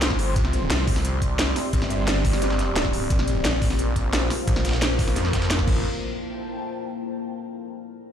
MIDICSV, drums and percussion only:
0, 0, Header, 1, 2, 480
1, 0, Start_track
1, 0, Tempo, 342857
1, 505, Time_signature, 4, 2, 24, 8
1, 11369, End_track
2, 0, Start_track
2, 0, Title_t, "Drums"
2, 24, Note_on_c, 9, 38, 113
2, 24, Note_on_c, 9, 42, 89
2, 25, Note_off_c, 9, 38, 0
2, 25, Note_off_c, 9, 42, 0
2, 25, Note_on_c, 9, 38, 125
2, 25, Note_on_c, 9, 42, 87
2, 145, Note_on_c, 9, 36, 64
2, 145, Note_on_c, 9, 40, 46
2, 165, Note_off_c, 9, 38, 0
2, 165, Note_off_c, 9, 42, 0
2, 265, Note_on_c, 9, 42, 70
2, 265, Note_on_c, 9, 46, 80
2, 285, Note_off_c, 9, 36, 0
2, 285, Note_off_c, 9, 40, 0
2, 405, Note_off_c, 9, 42, 0
2, 405, Note_off_c, 9, 46, 0
2, 505, Note_on_c, 9, 36, 118
2, 505, Note_on_c, 9, 42, 90
2, 506, Note_off_c, 9, 42, 0
2, 506, Note_on_c, 9, 42, 90
2, 626, Note_on_c, 9, 40, 51
2, 645, Note_off_c, 9, 36, 0
2, 646, Note_off_c, 9, 42, 0
2, 744, Note_on_c, 9, 42, 68
2, 747, Note_off_c, 9, 42, 0
2, 747, Note_on_c, 9, 42, 66
2, 766, Note_off_c, 9, 40, 0
2, 887, Note_off_c, 9, 42, 0
2, 984, Note_on_c, 9, 38, 114
2, 984, Note_on_c, 9, 42, 88
2, 985, Note_off_c, 9, 38, 0
2, 985, Note_off_c, 9, 42, 0
2, 985, Note_on_c, 9, 38, 122
2, 985, Note_on_c, 9, 42, 92
2, 1125, Note_off_c, 9, 38, 0
2, 1125, Note_off_c, 9, 42, 0
2, 1225, Note_on_c, 9, 36, 104
2, 1225, Note_on_c, 9, 42, 69
2, 1226, Note_on_c, 9, 46, 83
2, 1345, Note_on_c, 9, 38, 55
2, 1346, Note_on_c, 9, 40, 45
2, 1365, Note_off_c, 9, 36, 0
2, 1365, Note_off_c, 9, 42, 0
2, 1366, Note_off_c, 9, 46, 0
2, 1465, Note_on_c, 9, 42, 89
2, 1466, Note_off_c, 9, 42, 0
2, 1466, Note_on_c, 9, 42, 90
2, 1485, Note_off_c, 9, 38, 0
2, 1486, Note_off_c, 9, 40, 0
2, 1606, Note_off_c, 9, 42, 0
2, 1704, Note_on_c, 9, 42, 69
2, 1705, Note_on_c, 9, 36, 60
2, 1706, Note_off_c, 9, 42, 0
2, 1706, Note_on_c, 9, 42, 65
2, 1845, Note_off_c, 9, 36, 0
2, 1846, Note_off_c, 9, 42, 0
2, 1945, Note_on_c, 9, 38, 121
2, 1945, Note_on_c, 9, 42, 86
2, 2085, Note_off_c, 9, 38, 0
2, 2085, Note_off_c, 9, 42, 0
2, 2185, Note_on_c, 9, 40, 52
2, 2185, Note_on_c, 9, 42, 70
2, 2185, Note_on_c, 9, 46, 85
2, 2325, Note_off_c, 9, 40, 0
2, 2325, Note_off_c, 9, 42, 0
2, 2325, Note_off_c, 9, 46, 0
2, 2425, Note_on_c, 9, 36, 113
2, 2425, Note_on_c, 9, 42, 93
2, 2425, Note_on_c, 9, 46, 85
2, 2545, Note_on_c, 9, 38, 58
2, 2545, Note_on_c, 9, 40, 51
2, 2565, Note_off_c, 9, 36, 0
2, 2565, Note_off_c, 9, 42, 0
2, 2565, Note_off_c, 9, 46, 0
2, 2665, Note_on_c, 9, 42, 68
2, 2685, Note_off_c, 9, 38, 0
2, 2685, Note_off_c, 9, 40, 0
2, 2805, Note_off_c, 9, 42, 0
2, 2905, Note_on_c, 9, 38, 120
2, 2905, Note_on_c, 9, 42, 94
2, 3026, Note_off_c, 9, 38, 0
2, 3026, Note_on_c, 9, 38, 43
2, 3045, Note_off_c, 9, 42, 0
2, 3145, Note_on_c, 9, 36, 100
2, 3145, Note_on_c, 9, 46, 84
2, 3146, Note_off_c, 9, 38, 0
2, 3146, Note_on_c, 9, 38, 57
2, 3146, Note_on_c, 9, 42, 70
2, 3266, Note_off_c, 9, 42, 0
2, 3266, Note_on_c, 9, 40, 45
2, 3266, Note_on_c, 9, 42, 44
2, 3285, Note_off_c, 9, 36, 0
2, 3285, Note_off_c, 9, 46, 0
2, 3286, Note_off_c, 9, 38, 0
2, 3385, Note_off_c, 9, 42, 0
2, 3385, Note_on_c, 9, 42, 89
2, 3387, Note_off_c, 9, 42, 0
2, 3387, Note_on_c, 9, 38, 35
2, 3387, Note_on_c, 9, 42, 95
2, 3406, Note_off_c, 9, 40, 0
2, 3505, Note_off_c, 9, 38, 0
2, 3505, Note_on_c, 9, 38, 53
2, 3506, Note_on_c, 9, 40, 33
2, 3527, Note_off_c, 9, 42, 0
2, 3625, Note_off_c, 9, 38, 0
2, 3625, Note_on_c, 9, 38, 55
2, 3625, Note_on_c, 9, 42, 69
2, 3626, Note_off_c, 9, 42, 0
2, 3626, Note_on_c, 9, 42, 67
2, 3646, Note_off_c, 9, 40, 0
2, 3765, Note_off_c, 9, 38, 0
2, 3766, Note_off_c, 9, 42, 0
2, 3865, Note_on_c, 9, 38, 116
2, 3865, Note_on_c, 9, 42, 85
2, 3867, Note_off_c, 9, 38, 0
2, 3867, Note_off_c, 9, 42, 0
2, 3867, Note_on_c, 9, 38, 117
2, 3867, Note_on_c, 9, 42, 93
2, 3985, Note_on_c, 9, 36, 59
2, 3987, Note_on_c, 9, 40, 45
2, 4007, Note_off_c, 9, 38, 0
2, 4007, Note_off_c, 9, 42, 0
2, 4105, Note_on_c, 9, 42, 72
2, 4106, Note_on_c, 9, 46, 83
2, 4125, Note_off_c, 9, 36, 0
2, 4127, Note_off_c, 9, 40, 0
2, 4245, Note_off_c, 9, 42, 0
2, 4246, Note_off_c, 9, 46, 0
2, 4345, Note_on_c, 9, 36, 117
2, 4345, Note_on_c, 9, 42, 96
2, 4466, Note_on_c, 9, 40, 53
2, 4485, Note_off_c, 9, 36, 0
2, 4485, Note_off_c, 9, 42, 0
2, 4585, Note_on_c, 9, 42, 69
2, 4586, Note_off_c, 9, 42, 0
2, 4586, Note_on_c, 9, 42, 69
2, 4606, Note_off_c, 9, 40, 0
2, 4726, Note_off_c, 9, 42, 0
2, 4825, Note_on_c, 9, 38, 117
2, 4825, Note_on_c, 9, 42, 90
2, 4826, Note_off_c, 9, 38, 0
2, 4826, Note_off_c, 9, 42, 0
2, 4826, Note_on_c, 9, 38, 114
2, 4826, Note_on_c, 9, 42, 99
2, 4966, Note_off_c, 9, 38, 0
2, 4966, Note_off_c, 9, 42, 0
2, 5066, Note_on_c, 9, 36, 101
2, 5066, Note_on_c, 9, 38, 51
2, 5066, Note_on_c, 9, 42, 70
2, 5066, Note_on_c, 9, 46, 81
2, 5185, Note_on_c, 9, 40, 46
2, 5186, Note_off_c, 9, 38, 0
2, 5186, Note_on_c, 9, 38, 58
2, 5206, Note_off_c, 9, 36, 0
2, 5206, Note_off_c, 9, 42, 0
2, 5206, Note_off_c, 9, 46, 0
2, 5306, Note_on_c, 9, 42, 86
2, 5325, Note_off_c, 9, 40, 0
2, 5326, Note_off_c, 9, 38, 0
2, 5446, Note_off_c, 9, 42, 0
2, 5545, Note_on_c, 9, 36, 57
2, 5546, Note_on_c, 9, 42, 70
2, 5685, Note_off_c, 9, 36, 0
2, 5686, Note_off_c, 9, 42, 0
2, 5786, Note_on_c, 9, 38, 117
2, 5786, Note_on_c, 9, 42, 87
2, 5926, Note_off_c, 9, 38, 0
2, 5926, Note_off_c, 9, 42, 0
2, 6025, Note_on_c, 9, 40, 53
2, 6025, Note_on_c, 9, 46, 80
2, 6026, Note_on_c, 9, 42, 69
2, 6165, Note_off_c, 9, 40, 0
2, 6165, Note_off_c, 9, 46, 0
2, 6166, Note_off_c, 9, 42, 0
2, 6265, Note_on_c, 9, 36, 113
2, 6266, Note_on_c, 9, 42, 98
2, 6267, Note_on_c, 9, 46, 84
2, 6386, Note_on_c, 9, 38, 57
2, 6386, Note_on_c, 9, 40, 55
2, 6405, Note_off_c, 9, 36, 0
2, 6406, Note_off_c, 9, 42, 0
2, 6407, Note_off_c, 9, 46, 0
2, 6506, Note_off_c, 9, 38, 0
2, 6506, Note_on_c, 9, 38, 92
2, 6506, Note_on_c, 9, 42, 69
2, 6526, Note_off_c, 9, 40, 0
2, 6567, Note_off_c, 9, 38, 0
2, 6567, Note_off_c, 9, 42, 0
2, 6567, Note_on_c, 9, 38, 92
2, 6567, Note_on_c, 9, 42, 69
2, 6625, Note_off_c, 9, 38, 0
2, 6625, Note_off_c, 9, 42, 0
2, 6625, Note_on_c, 9, 38, 108
2, 6625, Note_on_c, 9, 42, 84
2, 6746, Note_off_c, 9, 38, 0
2, 6746, Note_off_c, 9, 42, 0
2, 6746, Note_on_c, 9, 38, 120
2, 6746, Note_on_c, 9, 42, 100
2, 6866, Note_off_c, 9, 38, 0
2, 6866, Note_on_c, 9, 38, 43
2, 6886, Note_off_c, 9, 42, 0
2, 6985, Note_on_c, 9, 36, 99
2, 6985, Note_on_c, 9, 46, 79
2, 6986, Note_off_c, 9, 38, 0
2, 6986, Note_on_c, 9, 38, 57
2, 6986, Note_on_c, 9, 42, 68
2, 7106, Note_off_c, 9, 42, 0
2, 7106, Note_on_c, 9, 42, 44
2, 7107, Note_on_c, 9, 40, 47
2, 7125, Note_off_c, 9, 36, 0
2, 7125, Note_off_c, 9, 46, 0
2, 7126, Note_off_c, 9, 38, 0
2, 7226, Note_off_c, 9, 42, 0
2, 7226, Note_on_c, 9, 38, 35
2, 7226, Note_on_c, 9, 42, 97
2, 7247, Note_off_c, 9, 40, 0
2, 7346, Note_off_c, 9, 38, 0
2, 7346, Note_on_c, 9, 38, 52
2, 7346, Note_on_c, 9, 40, 34
2, 7366, Note_off_c, 9, 42, 0
2, 7465, Note_on_c, 9, 36, 58
2, 7466, Note_off_c, 9, 38, 0
2, 7466, Note_on_c, 9, 38, 106
2, 7466, Note_on_c, 9, 42, 80
2, 7467, Note_off_c, 9, 42, 0
2, 7467, Note_on_c, 9, 42, 72
2, 7486, Note_off_c, 9, 40, 0
2, 7586, Note_off_c, 9, 38, 0
2, 7586, Note_off_c, 9, 42, 0
2, 7586, Note_on_c, 9, 38, 109
2, 7586, Note_on_c, 9, 42, 79
2, 7605, Note_off_c, 9, 36, 0
2, 7706, Note_off_c, 9, 38, 0
2, 7706, Note_off_c, 9, 42, 0
2, 7706, Note_on_c, 9, 38, 115
2, 7706, Note_on_c, 9, 42, 100
2, 7825, Note_on_c, 9, 36, 59
2, 7827, Note_on_c, 9, 40, 49
2, 7846, Note_off_c, 9, 38, 0
2, 7846, Note_off_c, 9, 42, 0
2, 7945, Note_off_c, 9, 36, 0
2, 7945, Note_on_c, 9, 36, 116
2, 7947, Note_on_c, 9, 49, 88
2, 7967, Note_off_c, 9, 40, 0
2, 8085, Note_off_c, 9, 36, 0
2, 8087, Note_off_c, 9, 49, 0
2, 11369, End_track
0, 0, End_of_file